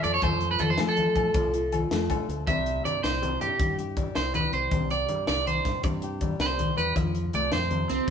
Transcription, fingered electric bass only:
0.04 0.21 F2 medium
0.23 0.55 F2 medium
0.60 0.76 F2 medium
0.79 1.28 F3 loud
1.34 1.84 C2 loud
1.91 2.08 F2 medium
2.29 2.45 D2 medium
2.48 2.80 C2 medium
2.85 3.01 G2 medium
3.04 3.36 C2 medium
3.42 3.50 G2 medium
3.60 4.09 G2 medium
4.17 4.49 C2 medium
4.53 4.70 C2 medium
4.72 5.04 C2 medium
5.10 5.26 G2 medium
5.28 5.61 C2 medium
5.65 5.73 G2 medium
5.84 6.33 G2 loud
6.39 6.72 C2 medium
6.78 6.94 E2 loud
6.96 7.29 F2 medium
7.34 7.50 C2 medium
7.52 7.85 F2 medium
7.90 7.98 C2 medium

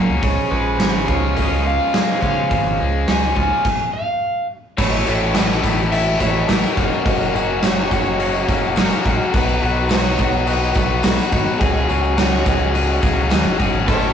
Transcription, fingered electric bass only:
0.09 0.22 C#2 medium
0.23 0.36 C#2 medium
0.51 0.79 A#1 loud
0.79 1.06 G#1 medium
1.08 1.48 C#2 medium
1.51 1.78 C#2 medium
2.22 2.49 C#3 medium
2.51 2.78 G#1 loud
2.81 3.07 C#2 medium
3.09 3.35 C#2 medium
3.37 3.50 C#2 medium
4.79 5.05 A1 loud
5.07 5.60 A1 medium
5.64 6.17 A1 medium
6.21 6.47 A1 loud
6.49 6.63 A1 medium
6.77 6.91 F#1 medium
7.06 7.33 F#1 medium
7.35 7.88 F#1 loud
7.92 8.45 F#1 medium
8.49 8.75 F#1 loud
8.77 8.90 F#1 loud
9.06 9.19 A#1 loud
9.34 9.60 B1 loud
9.63 10.15 B1 loud
10.19 10.72 B1 loud
10.76 11.02 B1 loud
11.05 11.18 B1 loud
11.33 11.46 G#1 loud
11.61 11.87 C#2 loud
11.90 12.43 C#2 loud
12.46 12.99 C#2 medium
13.03 13.29 C#2 loud
13.32 13.44 D#2 medium
13.45 13.58 F1 loud
13.60 13.73 F#1 medium
13.74 13.87 G#1 medium
13.88 14.13 A1 loud

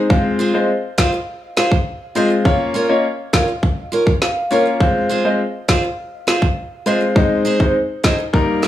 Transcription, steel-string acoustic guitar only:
0.39 0.57 F4 medium
0.39 0.58 G#4 medium
0.39 0.58 C5 loud
0.98 1.16 F4 medium
0.98 1.13 G#4 medium
0.98 1.11 C5 loud
1.13 muted steel-string acoustic guitar stroke medium
1.57 1.75 F4 medium
1.57 1.75 G#4 medium
1.57 1.76 C5 medium
2.15 2.34 F4 medium
2.15 2.30 G#4 medium
2.15 2.29 C5 loud
2.30 muted steel-string acoustic guitar stroke soft
2.74 2.92 F4 medium
2.74 2.93 A#4 medium
2.74 2.93 C#5 medium
3.33 3.51 F4 medium
3.33 3.48 A#4 medium
3.33 3.47 C#5 medium
3.48 muted steel-string acoustic guitar stroke soft
3.92 4.10 F4 medium
3.92 4.11 A#4 medium
3.92 4.11 C#5 medium
4.51 4.69 F4 medium
4.51 4.66 A#4 medium
4.51 4.64 C#5 medium
4.66 muted steel-string acoustic guitar stroke medium
5.09 5.28 F4 medium
5.09 5.28 G#4 medium
5.09 5.29 C5 medium
5.68 5.86 F4 medium
5.68 5.83 G#4 medium
5.68 5.82 C5 medium
5.83 muted steel-string acoustic guitar stroke soft
6.27 6.45 F4 medium
6.27 6.46 G#4 medium
6.27 6.46 C5 loud
6.86 7.04 F4 medium
6.86 7.01 G#4 medium
6.86 7.00 C5 medium
7.01 muted steel-string acoustic guitar stroke soft
7.45 7.63 D#4 medium
7.45 7.64 G#4 medium
7.45 7.64 C5 loud
8.03 8.22 D#4 medium
8.03 8.19 G#4 medium
8.03 8.17 C5 medium
8.19 muted steel-string acoustic guitar stroke soft
8.62 8.68 D#4 medium
8.62 8.68 G4 medium
8.62 8.68 A#4 medium

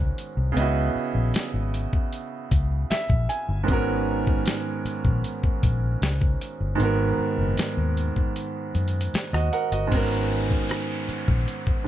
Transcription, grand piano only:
0.00 0.50 G#2 medium
0.00 0.51 D#3 medium
0.00 0.52 B3 medium
0.00 0.53 C#4 medium
0.00 0.54 F#4 medium
0.00 0.55 A#4 medium
0.52 3.62 C#3 medium
0.52 3.63 B3 medium
0.57 3.65 E4 medium
0.57 3.64 D#5 medium
0.61 3.67 F#4 medium
2.90 3.27 E5 medium
3.29 3.66 G#5 medium
3.63 6.74 G#2 medium
3.63 6.75 D#3 medium
3.63 6.75 B3 medium
3.69 6.76 C#4 medium
3.69 6.77 F#4 medium
3.69 6.78 A#4 medium
6.75 9.85 G#2 medium
6.75 9.87 D#3 medium
6.80 9.88 B3 medium
6.80 8.72 F#4 medium
6.85 8.73 A#4 medium
9.33 9.52 F#4 medium
9.33 9.52 D#5 medium
9.53 9.71 A#4 medium
9.53 9.71 F#5 medium
9.72 9.93 F#4 medium
9.72 10.09 D#5 medium
9.87 11.80 G#2 medium
9.87 11.81 D#3 medium
9.87 11.82 B3 medium
9.93 11.83 C#4 medium
9.93 11.84 F#4 medium
9.93 11.85 A#4 medium
11.84 11.88 G#2 medium

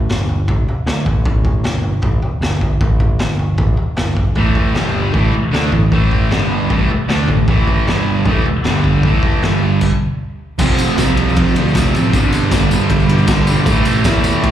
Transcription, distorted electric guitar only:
4.37 4.75 A2 loud
4.37 4.75 E3 medium
4.37 4.76 A3 loud
4.75 5.14 G2 medium
4.75 5.13 D3 medium
4.75 5.14 G3 medium
5.13 5.32 A2 medium
5.13 5.34 E3 medium
5.13 5.34 A3 loud
5.33 muted distorted electric guitar stroke medium
5.51 5.71 D3 medium
5.51 5.72 A3 medium
5.51 5.72 D4 medium
5.72 5.88 A2 medium
5.72 5.88 E3 medium
5.91 6.32 A2 medium
5.91 6.33 E3 medium
5.91 6.31 A3 loud
6.31 6.70 G2 medium
6.31 6.69 D3 medium
6.31 6.70 G3 loud
6.70 6.88 A2 medium
6.70 6.89 E3 medium
6.70 6.90 A3 medium
6.90 muted distorted electric guitar stroke medium
7.08 7.28 D3 medium
7.08 7.28 A3 medium
7.08 7.28 D4 medium
7.29 7.44 A2 medium
7.29 7.45 E3 medium
7.48 7.86 A2 medium
7.48 7.87 E3 loud
7.48 7.87 A3 loud
7.87 8.25 G2 medium
7.87 8.26 D3 medium
7.87 8.26 G3 loud
8.27 8.45 A2 medium
8.27 8.46 E3 medium
8.27 8.46 A3 medium
8.46 muted distorted electric guitar stroke medium
8.65 9.03 G2 medium
8.65 9.03 D3 medium
8.65 9.04 G3 medium
9.03 9.42 A2 loud
9.03 9.43 E3 medium
9.03 9.43 A3 loud
9.44 9.82 G2 medium
9.44 9.82 D3 medium
9.44 9.83 G3 loud
10.59 10.96 F2 medium
10.59 10.99 C3 loud
10.63 11.00 F3 loud
10.97 11.74 F2 medium
10.97 11.58 C3 medium
11.01 11.54 F3 medium
11.55 11.76 C3 medium
11.55 11.78 F3 medium
11.75 12.12 F2 medium
11.75 11.96 C3 loud
11.75 11.92 F3 loud
11.93 12.12 F3 medium
11.98 12.14 C3 medium
12.12 12.49 G2 loud
12.12 12.52 D3 loud
12.12 12.54 G3 loud
12.51 13.27 G2 medium
12.51 13.11 D3 medium
12.55 13.07 G3 medium
13.08 13.31 G3 medium
13.13 13.29 D3 medium
13.28 13.66 G2 medium
13.28 13.50 D3 medium
13.32 13.46 G3 medium
13.47 13.66 D3 medium
13.47 13.66 G3 medium
13.66 14.05 A2 loud
13.66 14.07 E3 loud
13.70 14.09 A3 loud
14.06 14.51 A2 medium
14.06 14.51 E3 medium
14.06 14.51 A3 medium

